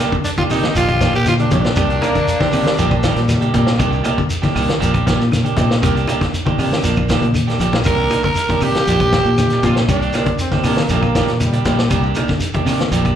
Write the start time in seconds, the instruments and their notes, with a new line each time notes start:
0.00 clean electric guitar D#3 A#3 D4 G4, claves, shekere
0.12 clean electric guitar D3, kick, shekere
0.24 tenor saxophone D4, alto saxophone D4, closed hi-hat, high conga, shekere
0.37 clean electric guitar D#3 A#3 D4 G4, tenor saxophone F4, alto saxophone F4, kick, closed hi-hat, high conga, shekere
0.50 fingered electric bass C3, clean electric guitar D#3 A#3 D4 G4, tenor saxophone D#4, alto saxophone D#4, open hi-hat, low conga, claves, shekere
0.63 clean electric guitar D3, snare, closed hi-hat, shekere
0.75 fingered electric bass A#1, clean electric guitar F3 A#3 D4 G4, tenor saxophone F4, alto saxophone F4, closed hi-hat, high conga, shekere
0.89 clean electric guitar D4 G4, muted clean electric guitar stroke, kick, closed hi-hat, claves, shekere
1.01 clean electric guitar D#3 F3 A#3 D4 G4, kick, snare, closed hi-hat, shekere
1.13 fingered electric bass A#2, alto saxophone G4, tenor saxophone G4, snare, shekere
1.25 clean electric guitar D3, tenor saxophone F4, alto saxophone F4, snare, closed hi-hat, high conga, claves, shekere
1.38 clean electric guitar A#3 D4 G4, tenor saxophone D4, closed hi-hat, high conga, shekere
1.42 alto saxophone D4
1.51 fingered electric bass A#1, clean electric guitar C3 F3 A#3 D4 G4, tenor saxophone D4, alto saxophone D4, kick, closed hi-hat, high conga, low conga, shekere
1.64 snare, shekere
1.76 fingered electric bass C2, clean electric guitar C3 D#3 A#3 D4 G4, kick, closed hi-hat, claves, shekere
1.90 clean electric guitar A#3 D4 G4, closed hi-hat, shekere
2.01 clean electric guitar D#3 A#3 D4, trombone section A#3, muted clean electric guitar stroke, closed hi-hat, high conga, claves, shekere
2.15 clean electric guitar D3, kick, closed hi-hat, shekere
2.28 closed hi-hat, high conga, shekere
2.40 clean electric guitar D#3 A#3 D4 G4, trombone section C4, kick, snare, high conga, shekere
2.51 fingered electric bass C3, clean electric guitar D#3 A#3 D4 G4, trombone section A#3, open hi-hat, high conga, low conga, claves, shekere
2.65 clean electric guitar D3, trombone section G3, snare, shekere
2.78 fingered electric bass A#1, clean electric guitar F3 A#3 D4 G4, trombone section G3, closed hi-hat, high conga, low conga, shekere
2.90 clean electric guitar A#3 D4 G4, kick, claves, shekere
3.03 clean electric guitar D#3 F3 A#3 D4 G4, kick, snare, closed hi-hat, shekere
3.16 fingered electric bass A#2, snare, closed hi-hat, shekere
3.28 snare, closed hi-hat, high conga, claves, shekere
3.41 clean electric guitar A#3 D4 G4, closed hi-hat, high conga, shekere
3.54 fingered electric bass A#2, clean electric guitar C3 A#3 D4 G4, kick, closed hi-hat, high conga, low conga, shekere
3.67 snare, shekere
3.78 fingered electric bass C2, clean electric guitar C3 D#3 A#3 D4 G4, kick, closed hi-hat, high conga, low conga, claves, shekere
3.91 clean electric guitar A#3 D4 G4, shekere
4.03 clean electric guitar D#3 A#3 D4 G4, closed hi-hat, high conga, claves, shekere
4.18 clean electric guitar D3, kick, shekere
4.30 closed hi-hat, high conga, shekere
4.42 clean electric guitar D#3 A#3 D4 G4, kick, snare, closed hi-hat, high conga, shekere
4.54 fingered electric bass C2, clean electric guitar D#3 A#3 D4 G4, open hi-hat, low conga, claves, shekere
4.69 clean electric guitar D3, snare, closed hi-hat, shekere
4.79 fingered electric bass A#1, clean electric guitar F3 A#3 D4 G4, closed hi-hat, high conga, shekere
4.93 clean electric guitar A#3 D4 G4, kick, closed hi-hat, claves, shekere
5.06 clean electric guitar D#3 F3 A#3 D4 G4, kick, snare, closed hi-hat, shekere
5.19 fingered electric bass A#2, snare, shekere
5.32 clean electric guitar D3, snare, closed hi-hat, high conga, claves, shekere
5.44 clean electric guitar A#3 D4 G4, closed hi-hat, high conga, shekere
5.57 fingered electric bass A#2, clean electric guitar C3 F3 A#3 D4 G4, kick, closed hi-hat, high conga, low conga, shekere
5.71 snare, shekere
5.82 fingered electric bass C2, clean electric guitar C3 D#3 A#3 G4, muted clean electric guitar stroke, kick, closed hi-hat, claves, shekere
5.95 clean electric guitar A#3 D4 G4, closed hi-hat, shekere
6.08 clean electric guitar D#3 A#3 D4 G4, closed hi-hat, high conga, claves, shekere
6.21 clean electric guitar D3, kick, snare, closed hi-hat, shekere
6.34 closed hi-hat, high conga, shekere
6.45 clean electric guitar D#3 A#3 D4 G4, kick, high conga, shekere
6.58 fingered electric bass C3, clean electric guitar D#3 A#3 D4 G4, open hi-hat, high conga, low conga, claves, shekere
6.72 clean electric guitar D3, snare, shekere
6.83 fingered electric bass A#1, clean electric guitar F3 A#3 D4, muted clean electric guitar stroke, closed hi-hat, high conga, low conga, shekere
6.96 clean electric guitar A#3 D4, kick, claves, shekere
7.09 clean electric guitar D#3 F3 A#3 D4 G4, kick, snare, closed hi-hat, shekere
7.22 fingered electric bass A#2, closed hi-hat, high conga, shekere
7.34 clean electric guitar D3, closed hi-hat, claves, shekere
7.47 clean electric guitar A#3 D4 G4, snare, closed hi-hat, shekere
7.60 fingered electric bass A#1, clean electric guitar D3 F3 A#3 D4 G4, closed hi-hat, low conga, shekere
7.73 snare, low conga, shekere
7.84 fingered electric bass C2, clean electric guitar C3 D#3 A#3 D4 G4, tenor saxophone A#4, alto saxophone A#4, kick, closed hi-hat, claves, shekere
7.97 clean electric guitar A#3 D4 G4, shekere
8.10 clean electric guitar D#3 A#3 D4, muted clean electric guitar stroke, closed hi-hat, high conga, claves, shekere
8.23 clean electric guitar D3, alto saxophone A#4, tenor saxophone A#4, kick, shekere
8.35 closed hi-hat, high conga, shekere
8.48 clean electric guitar D#3 A#3 D4 G4, kick, closed hi-hat, high conga, shekere
8.61 fingered electric bass C3, clean electric guitar D#3 A#3 D4 G4, alto saxophone G4, tenor saxophone G4, open hi-hat, low conga, claves, shekere
8.74 muted clean electric guitar stroke, snare, closed hi-hat, shekere
8.87 fingered electric bass A#1, clean electric guitar F3 D4 G4, muted clean electric guitar stroke, closed hi-hat, high conga, shekere
9.00 clean electric guitar A#3 D4 G4, kick, closed hi-hat, claves, shekere
9.12 clean electric guitar D#3 A#3 D4 G4, muted clean electric guitar stroke, kick, snare, closed hi-hat, shekere
9.25 fingered electric bass A#2, shekere
9.38 clean electric guitar D3, snare, closed hi-hat, high conga, claves, shekere
9.50 clean electric guitar A#3 D4 G4, snare, closed hi-hat, shekere
9.63 fingered electric bass A#2, clean electric guitar C3 F3 D4 G4, tenor saxophone F4, alto saxophone F4, kick, closed hi-hat, high conga, low conga, shekere
9.76 snare, shekere
9.88 fingered electric bass C2, clean electric guitar C3 D#3 A#3 D4 G4, tenor saxophone D4, alto saxophone D4, kick, closed hi-hat, claves, shekere
10.02 clean electric guitar A#3 D4 G4, closed hi-hat, shekere
10.13 clean electric guitar D#3 A#3 D4 G4, snare, closed hi-hat, high conga, claves, shekere
10.26 clean electric guitar D3, kick, closed hi-hat, shekere
10.38 trombone section C4, closed hi-hat, high conga, shekere
10.51 clean electric guitar D#3 A#3 D4 G4, kick, snare, high conga, shekere
10.64 fingered electric bass C3, clean electric guitar D#3 A#3 D4 G4, trombone section A#3, snare, open hi-hat, low conga, claves, shekere
10.77 clean electric guitar D3, snare, shekere
10.89 fingered electric bass A#1, clean electric guitar F3 A#3 D4 G4, trombone section A#3, closed hi-hat, high conga, low conga, shekere
11.02 clean electric guitar A#3 D4 G4, kick, claves, shekere
11.15 clean electric guitar D#3 F3 A#3 D4 G4, kick, snare, closed hi-hat, shekere
11.28 fingered electric bass A#2, snare, closed hi-hat, shekere
11.40 trombone section G3, muted clean electric guitar stroke, closed hi-hat, high conga, claves, shekere
11.53 clean electric guitar A#3 D4 G4, closed hi-hat, high conga, shekere
11.65 fingered electric bass A#2, clean electric guitar F3 A#3 D4 G4, kick, snare, closed hi-hat, high conga, low conga, shekere
11.78 snare, shekere
11.90 fingered electric bass C2, clean electric guitar C3 D#3 A#3 D4 G4, kick, closed hi-hat, claves, shekere
12.03 clean electric guitar A#3 D4 G4, shekere
12.15 clean electric guitar D#3 A#3 D4, muted clean electric guitar stroke, closed hi-hat, high conga, claves, shekere
12.28 clean electric guitar D3, kick, snare, shekere
12.40 closed hi-hat, high conga, shekere
12.53 clean electric guitar D#3 A#3 D4 G4, kick, closed hi-hat, high conga, shekere
12.65 fingered electric bass C3, clean electric guitar D#3 A#3 D4 G4, snare, open hi-hat, low conga, claves, shekere
12.80 clean electric guitar D3, snare, closed hi-hat, shekere
12.91 fingered electric bass A#1, clean electric guitar F3 A#3 D4 G4, closed hi-hat, high conga, low conga, shekere
13.05 clean electric guitar A#3 D4 G4, kick, closed hi-hat, claves, shekere